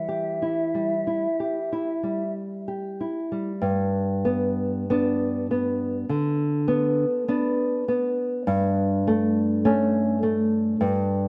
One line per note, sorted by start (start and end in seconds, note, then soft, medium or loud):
0.00 1.03 E3 soft
0.00 0.47 G3 soft
0.00 2.34 E5 soft
0.08 0.61 G4 soft
0.42 0.94 E4 soft
0.74 1.26 G3 soft
1.07 1.58 E4 soft
1.40 1.90 G4 soft
1.72 2.22 E4 soft
2.03 3.05 G3 soft
2.68 3.19 G4 soft
3.01 3.51 E4 soft
3.32 3.63 G3 soft
3.62 6.04 G2 medium
4.25 4.84 B3 medium
4.90 5.46 B3 medium
4.90 5.46 D4 medium
5.51 6.05 B3 soft
6.09 7.04 D3 soft
6.68 7.23 B3 medium
7.28 7.83 B3 medium
7.28 7.83 D4 medium
7.88 8.43 B3 medium
8.47 10.75 G2 medium
9.07 9.60 A3 medium
9.65 10.18 A3 medium
9.65 10.18 C#4 medium
10.23 10.76 A3 medium
10.81 11.28 G2 medium